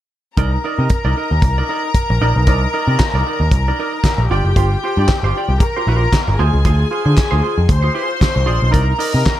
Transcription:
0.37 picked electric bass C2, clean electric guitar D#4 A#4 D5, string section A#4 A#5, kick, closed hi-hat
0.52 muted clean electric guitar stroke
0.64 clean electric guitar D#4 A#4 D5
0.79 picked electric bass C3, clean electric guitar D#4 A#4 D#5
0.90 kick, closed hi-hat
1.05 picked electric bass C2, clean electric guitar D#4 A#4 D5
1.17 clean electric guitar D#4 A#4 D#5
1.31 picked electric bass D#2, muted clean electric guitar stroke
1.42 picked electric bass C2, muted clean electric guitar stroke, kick, closed hi-hat
1.58 clean electric guitar D#4 A#4 D5
1.69 clean electric guitar D#4 A#4 D5
1.84 muted clean electric guitar stroke
1.95 kick, closed hi-hat
2.10 picked electric bass A#1, muted clean electric guitar stroke
2.21 picked electric bass A#1, clean electric guitar D#4 A#4 D5
2.36 picked electric bass B1, muted clean electric guitar stroke
2.47 picked electric bass C2, clean electric guitar D#4 A#4 D5, kick, closed hi-hat
2.62 muted clean electric guitar stroke
2.73 clean electric guitar D#4 A#4 D5
2.88 picked electric bass C3, clean electric guitar D#4 A#4 D5
2.99 muted clean electric guitar stroke, kick, snare, clap, closed hi-hat
3.14 picked electric bass C2, clean electric guitar D#4 A#4 D5
3.26 clean electric guitar D#4 A#4 D5
3.40 picked electric bass D#2, muted clean electric guitar stroke
3.51 picked electric bass C2, muted clean electric guitar stroke, kick, closed hi-hat
3.68 clean electric guitar D#4 A#4 D5
3.79 clean electric guitar D#4 A#4 D5
3.94 muted clean electric guitar stroke
4.04 muted clean electric guitar stroke, kick, snare, clap, closed hi-hat
4.18 picked electric bass A#1, muted clean electric guitar stroke
4.29 picked electric bass G1, clean electric guitar F4 G4 D5, string section G4 G5
4.45 picked electric bass F#1, muted clean electric guitar stroke
4.56 picked electric bass G1, clean electric guitar F4 G4 C5, kick, closed hi-hat
4.72 muted clean electric guitar stroke
4.83 clean electric guitar F4 G4 C5
4.97 picked electric bass G2, clean electric guitar F4 G4 D5
5.08 muted clean electric guitar stroke, kick, snare, clap, closed hi-hat
5.23 picked electric bass G1, clean electric guitar F4 G4 C5
5.36 clean electric guitar F4 G4 D5
5.49 picked electric bass C2, muted clean electric guitar stroke
5.59 string section A#4 A#5, muted clean electric guitar stroke, kick, closed hi-hat
5.76 clean electric guitar F4 G4 C5
5.87 picked electric bass A#1, clean electric guitar F4 G4 C5
6.02 muted clean electric guitar stroke
6.13 kick, snare, clap, closed hi-hat
6.28 picked electric bass G1, muted clean electric guitar stroke
6.38 picked electric bass D2, clean electric guitar F4 G#4 C5, string section G#4 G#5
6.54 picked electric bass C#2, muted clean electric guitar stroke
6.65 picked electric bass D2, clean electric guitar F4 G#4 C5, kick, closed hi-hat
6.80 muted clean electric guitar stroke
6.91 clean electric guitar F4 G#4 C5
7.05 picked electric bass D3, clean electric guitar F4 G#4 C5
7.17 muted clean electric guitar stroke, kick, snare, clap, closed hi-hat
7.31 picked electric bass D2, clean electric guitar F4 G#4 C5
7.43 clean electric guitar F4 G#4 C5
7.58 picked electric bass F2, muted clean electric guitar stroke
7.69 picked electric bass D2, string section C5 C6, muted clean electric guitar stroke, kick, closed hi-hat
7.82 clean electric guitar F4 G#4 C5
7.94 clean electric guitar F4 G#4 C5
8.10 muted clean electric guitar stroke
8.20 muted clean electric guitar stroke, kick, snare, clap, closed hi-hat
8.35 picked electric bass C2, muted clean electric guitar stroke
8.46 picked electric bass A#1, clean electric guitar F4 G#4 D5
8.60 picked electric bass B1, muted clean electric guitar stroke
8.71 picked electric bass C2, clean electric guitar D#4 A#4 D5, string section A#4 A#5, kick, closed hi-hat
8.86 muted clean electric guitar stroke
8.99 clean electric guitar D#4 A#4 D5, open hi-hat
9.13 picked electric bass C3, clean electric guitar D#4 A#4 D#5
9.25 muted clean electric guitar stroke, kick, snare, clap, closed hi-hat

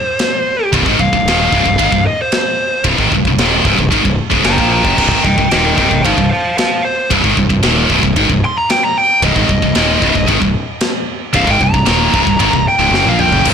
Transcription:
Already playing: lead electric guitar C5
0.19 snare, ride bell
0.73 fingered electric bass C1, distorted electric guitar C2 G2, kick, ride bell
0.86 fingered electric bass G#1, distorted electric guitar G#2 D#3, kick
0.99 fingered electric bass C1, distorted electric guitar C2 G2, lead electric guitar F5, kick
1.13 fingered electric bass C1, distorted electric guitar C2 G2, kick
1.25 fingered electric bass D#1, distorted electric guitar D#2 A#2 D#3, snare, ride bell
1.52 fingered electric bass C1, distorted electric guitar C2 G2, kick
1.66 fingered electric bass C1, distorted electric guitar C2 G2, kick
1.78 fingered electric bass G#1, distorted electric guitar G#2 D#3, kick, ride bell
1.92 fingered electric bass C1, distorted electric guitar C2 G2, kick
2.07 lead electric guitar D#5
2.22 lead electric guitar C5
2.32 lead electric guitar C5, snare, ride bell
2.84 fingered electric bass C1, distorted electric guitar C2 G2, kick, ride bell
2.98 fingered electric bass G#1, distorted electric guitar G#2 D#3, kick
3.12 fingered electric bass C1, distorted electric guitar C2 G2, kick
3.25 fingered electric bass C1, distorted electric guitar C2 G2, kick
3.37 fingered electric bass D#1, distorted electric guitar D#2 A#2, snare, ride bell
3.42 distorted electric guitar D#3
3.65 fingered electric bass C1, distorted electric guitar C2 G2, kick
3.79 fingered electric bass C1, distorted electric guitar C2 G2, kick
3.90 fingered electric bass G#1, distorted electric guitar G#2 D#3, kick, ride bell
4.04 fingered electric bass C1, distorted electric guitar C2 G2, kick
4.30 fingered electric bass C#1, distorted electric guitar C#2 G#2, kick
4.44 fingered electric bass F#1, distorted electric guitar F#2 C#3, lead electric guitar G5 A#5, snare, ride bell
4.57 fingered electric bass A#1, distorted electric guitar A#2 F3 A#3, kick
4.72 lead electric guitar G5 A#5
4.85 fingered electric bass F#1, distorted electric guitar F#2 C#3, kick
4.98 fingered electric bass C1, distorted electric guitar C2 G2, lead electric guitar G5 A#5, kick, crash
5.11 fingered electric bass G#1, distorted electric guitar G#2 D#3, kick
5.24 fingered electric bass C1, distorted electric guitar C2 G2, lead electric guitar D#5 G5, kick
5.38 fingered electric bass C1, distorted electric guitar C2 G2, kick
5.51 fingered electric bass D#1, distorted electric guitar D#2 A#2 D#3, lead electric guitar D#5 G5, snare, ride bell
5.76 fingered electric bass C1, distorted electric guitar C2 G2, lead electric guitar D#5 G5, kick
5.91 fingered electric bass C1, distorted electric guitar C2 G2, kick
6.04 fingered electric bass G#1, distorted electric guitar G#2 D#3, lead electric guitar C5 F5, kick, ride bell
6.17 fingered electric bass C1, distorted electric guitar C2 G2, kick
6.31 lead electric guitar C5 F5
6.57 lead electric guitar C5 F5, snare, ride bell
6.85 lead electric guitar C5
7.10 fingered electric bass C1, distorted electric guitar C2 G2, kick, ride bell
7.24 fingered electric bass G#1, distorted electric guitar G#2 D#3, kick
7.37 fingered electric bass C1, distorted electric guitar C2 G2, kick
7.49 fingered electric bass C1, distorted electric guitar C2 G2, kick
7.63 fingered electric bass D#1, distorted electric guitar D#2 A#2 D#3, snare, ride bell
7.90 fingered electric bass C1, distorted electric guitar C2 G2, kick
8.03 fingered electric bass C1, distorted electric guitar C2 G2, kick
8.16 fingered electric bass G#1, distorted electric guitar G#2 D#3, kick, ride bell
8.29 fingered electric bass C1, distorted electric guitar C2 G2, kick
8.45 lead electric guitar C6
8.58 lead electric guitar A#5
8.70 lead electric guitar G5, snare, ride bell
8.83 lead electric guitar A#5
8.98 lead electric guitar G5
9.22 fingered electric bass C1, distorted electric guitar C2 G2, lead electric guitar D#5, kick, ride bell
9.35 fingered electric bass G#1, distorted electric guitar G#2 D#3, kick
9.49 fingered electric bass C1, distorted electric guitar C2 G2, kick
9.62 fingered electric bass C1, distorted electric guitar C2 G2, kick
9.75 fingered electric bass D#1, distorted electric guitar D#2 A#2 D#3, snare, ride bell
10.02 fingered electric bass C1, distorted electric guitar C2 G2, kick
10.15 fingered electric bass C1, distorted electric guitar C2 G2, kick
10.27 fingered electric bass G#1, distorted electric guitar G#2 D#3, kick, ride bell
10.40 fingered electric bass C1, distorted electric guitar C2 G2, kick
10.81 snare, ride bell
11.33 fingered electric bass C1, distorted electric guitar C2 G2, lead electric guitar F5, kick, ride bell
11.47 fingered electric bass G#1, distorted electric guitar G#2 D#3, kick
11.51 lead electric guitar G5
11.61 fingered electric bass C1, distorted electric guitar C2 G2, lead electric guitar A#5, kick
11.73 fingered electric bass C1, distorted electric guitar C2 G2, kick
11.86 fingered electric bass D#1, distorted electric guitar D#2 A#2 D#3, snare, ride bell
12.13 fingered electric bass C1, distorted electric guitar C2 G2, kick
12.25 fingered electric bass C1, distorted electric guitar C2 G2, kick
12.39 fingered electric bass G#1, distorted electric guitar G#2 D#3, kick, ride bell
12.52 fingered electric bass C1, distorted electric guitar C2 G2, kick
12.68 lead electric guitar G5
12.79 fingered electric bass C#1, distorted electric guitar C#2 G#2
12.91 fingered electric bass F#1, distorted electric guitar F#2 C#3, snare
12.96 lead electric guitar G5
13.05 fingered electric bass A#1, distorted electric guitar A#2 F3 A#3, lead electric guitar F5, high tom
13.19 lead electric guitar G5, mid tom
13.32 fingered electric bass F#1, distorted electric guitar F#2 C#3, floor tom
13.45 fingered electric bass C1, distorted electric guitar C2 G2, kick, crash

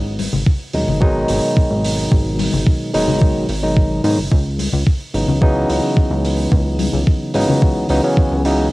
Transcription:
Already playing: analog synth bass G#1
0.19 open hi-hat, high conga
0.33 analog synth bass G#1, low conga
0.47 kick
0.73 analog synth bass D#1, tine electric piano B2 D#3 F#3 G#3 D#4, open hi-hat
0.88 analog synth bass G#1, low conga
1.00 tine electric piano B2 D#3 F#3 G#3 D#4, kick
1.28 analog synth bass G#1, open hi-hat
1.57 kick
1.71 analog synth bass G#1
1.84 open hi-hat
2.11 analog synth bass G#1, kick
2.39 open hi-hat, high conga
2.53 analog synth bass G#1, low conga
2.67 kick
2.93 analog synth bass D#1, tine electric piano B2 D#3 F#3 G#3 D#4, open hi-hat
3.08 analog synth bass G#1, low conga
3.22 kick
3.49 analog synth bass G#1, open hi-hat
3.62 tine electric piano B2 D#3 F#3 G#3 D#4
3.77 kick
4.04 analog synth bass G#2, tine electric piano B2 D#3 F#3 G#3 D#4, open hi-hat
4.18 analog synth bass F#1
4.32 analog synth bass C#2, kick
4.59 open hi-hat, high conga
4.72 analog synth bass C#2, low conga
4.87 kick
5.14 analog synth bass G#1, tine electric piano C#3 E3 F#3 B3 D#4, open hi-hat
5.28 analog synth bass C#2, low conga
5.41 tine electric piano C#3 E3 F#3 B3 D#4, kick
5.69 analog synth bass C#2, open hi-hat
5.97 kick
6.11 analog synth bass C#2
6.25 open hi-hat
6.52 analog synth bass C#2, kick
6.79 open hi-hat, high conga
6.93 analog synth bass C#2, low conga
7.07 kick
7.34 analog synth bass G#1, tine electric piano C#3 E3 F#3 B3 D#4, open hi-hat
7.48 analog synth bass C#2, low conga
7.62 kick
7.89 analog synth bass C#2, tine electric piano C#3 E3 F#3 B3 D#4, open hi-hat
8.03 tine electric piano C#3 E3 F#3 B3 C#4
8.17 kick
8.31 analog synth bass C#2
8.44 tine electric piano C#3 E3 F#3 B3 D#4, open hi-hat

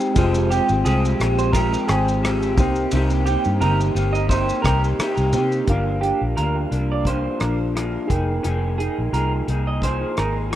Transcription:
Already playing: tine electric piano G#3 C4 D#4 G4 C5, clean electric guitar C4 D#4 G4
0.00 shaker
0.14 fingered electric bass F1, clean electric guitar F3 G#3, tine electric piano G#3 C4 F4 G4, kick, ride, shaker
0.18 clean electric guitar C4 G4, tine electric piano C5
0.34 shaker
0.50 clean electric guitar C4 G4, ride, shaker
0.54 clean electric guitar G#3
0.69 fingered electric bass G#1, shaker
0.85 fingered electric bass C2, clean electric guitar F3 G#3 C4 G4 G#4, ride, shaker
1.05 shaker
1.19 fingered electric bass A#1, clean electric guitar G#3 C4 G4, cross-stick, ride, shaker
1.39 clean electric guitar C5, shaker
1.53 clean electric guitar F3 G#3 C4 G4 A#4, kick, ride, shaker
1.74 shaker
1.88 fingered electric bass G#1, clean electric guitar C4 G4 G#4, cross-stick, ride, shaker
1.92 clean electric guitar G#3
2.08 shaker
2.23 clean electric guitar F3 G#3 C4 G4, cross-stick, ride, shaker
2.42 shaker
2.55 fingered electric bass C2, tine electric piano A#3 C4 D#4, clean electric guitar D#4 G4, kick, ride, shaker
2.59 clean electric guitar A#3, tine electric piano G4 C5
2.75 shaker
2.91 fingered electric bass C2, clean electric guitar C3 A#3 D#4 G4, ride, shaker
3.10 shaker
3.26 clean electric guitar D#4 G4, ride, shaker
3.30 clean electric guitar A#3
3.44 fingered electric bass G2, shaker
3.60 fingered electric bass G1, clean electric guitar C3 A#3 D#4 G4 A#4, ride, shaker
3.81 shaker
3.95 fingered electric bass G1, clean electric guitar A#3 D#4 G4, ride, shaker
4.13 clean electric guitar D#5, shaker
4.29 clean electric guitar C3 A#3 D#4 G4 C5, kick, ride, shaker
4.49 shaker
4.62 fingered electric bass C2, clean electric guitar D#4 G4 A#4, kick, cross-stick, ride, shaker
4.67 clean electric guitar A#3
4.84 shaker
4.99 clean electric guitar C3 A#3 D#4 G4, muted fingered electric bass stroke, cross-stick, ride, shaker
5.17 fingered electric bass C2, shaker
5.32 fingered electric bass C3, tine electric piano A#3 C4 D#4 G4 C5, clean electric guitar D#4 G4, ride, shaker
5.37 clean electric guitar A#3
5.52 shaker
5.64 fingered electric bass G1, tine electric piano D4 G4 A#4, kick, closed hi-hat
5.69 clean electric guitar G2 F3 A#3 D4, tine electric piano F5
6.01 clean electric guitar A#3 D4 G4, closed hi-hat
6.05 clean electric guitar F3
6.21 fingered electric bass A#1
6.36 fingered electric bass D2, clean electric guitar G2 F3 A#3 D4 A#4, closed hi-hat
6.71 fingered electric bass C2, clean electric guitar A#3 D4, closed hi-hat
6.76 clean electric guitar F3
6.92 clean electric guitar D5
7.05 clean electric guitar G2 F3 A#3 C5, kick, closed hi-hat
7.09 clean electric guitar D4
7.40 fingered electric bass A#1, clean electric guitar F3 A#3 D4 A#4, cross-stick, closed hi-hat
7.74 clean electric guitar G2 F3 A#3 D4, cross-stick, closed hi-hat
8.06 fingered electric bass F1, tine electric piano D#4 G#4 A#4, clean electric guitar D#4 G#4, kick
8.10 clean electric guitar A#3, tine electric piano G5, closed hi-hat
8.43 fingered electric bass F1, clean electric guitar F3 A#3 D#4 G#4, closed hi-hat
8.78 clean electric guitar D#4 G#4, closed hi-hat
8.82 clean electric guitar A#3
8.98 fingered electric bass A#1
9.13 fingered electric bass C2, clean electric guitar F3 A#3 D#4 G#4 A#4, closed hi-hat
9.47 fingered electric bass C2, clean electric guitar A#3 D#4 G#4, closed hi-hat
9.67 clean electric guitar D#5
9.82 clean electric guitar F3 A#3 D#4 G#4 C5, kick, closed hi-hat
10.16 fingered electric bass G#1, clean electric guitar A#3 D#4 G#4 A#4, cross-stick, closed hi-hat
10.51 clean electric guitar F3 A#3

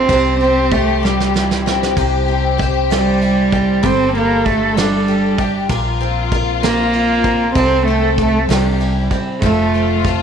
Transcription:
Already playing: cello C4, steel-string acoustic guitar D4 F4
0.07 fingered electric bass C2, steel-string acoustic guitar C3 C5, violin section G4, kick, ride
0.41 steel-string acoustic guitar C4, cello C4, ride
0.71 cello A3, steel-string acoustic guitar C5, kick, ride
1.03 steel-string acoustic guitar G3, cello G3, snare
1.20 snare
1.34 steel-string acoustic guitar E4, snare
1.51 snare
1.65 steel-string acoustic guitar C4, violin section G4, snare
1.83 snare
1.97 fingered electric bass C2, steel-string acoustic guitar C3 C5, kick, ride
2.28 steel-string acoustic guitar C4, ride
2.58 steel-string acoustic guitar C5, kick, snare, ride
2.90 steel-string acoustic guitar G3, cello G3, snare, ride
3.21 steel-string acoustic guitar E4, ride
3.52 steel-string acoustic guitar C4, kick, ride
3.83 fingered electric bass G1, steel-string acoustic guitar G3, cello C4, violin section A4, kick, ride
4.15 cello A#3, steel-string acoustic guitar D4, ride
4.45 cello A3, kick, ride
4.76 cello G3, steel-string acoustic guitar D4, snare, ride
5.08 steel-string acoustic guitar G4, ride
5.38 steel-string acoustic guitar D4, violin section G4, kick, ride
5.69 fingered electric bass A#1, steel-string acoustic guitar A#2 A#4, violin section F4, kick, ride
6.01 steel-string acoustic guitar C4, ride
6.31 steel-string acoustic guitar A#4, kick, ride
6.63 steel-string acoustic guitar A#3, cello A#3, snare, ride
6.93 steel-string acoustic guitar F4, ride
7.24 steel-string acoustic guitar C4, kick, ride
7.55 fingered electric bass C2, steel-string acoustic guitar C3 A4, cello C4, violin section A4, kick, ride
7.87 cello A3, steel-string acoustic guitar C4, ride
8.18 cello A3, steel-string acoustic guitar A4, kick, ride
8.49 fingered electric bass C2, steel-string acoustic guitar C3, cello G3, violin section G4, snare, ride
8.80 steel-string acoustic guitar E4, ride
9.11 steel-string acoustic guitar C4, kick, ride
9.41 fingered electric bass F1, steel-string acoustic guitar F3 A4, cello A3, violin section F4, kick, ride
9.74 steel-string acoustic guitar C4, ride
10.04 steel-string acoustic guitar A4, kick, snare, ride

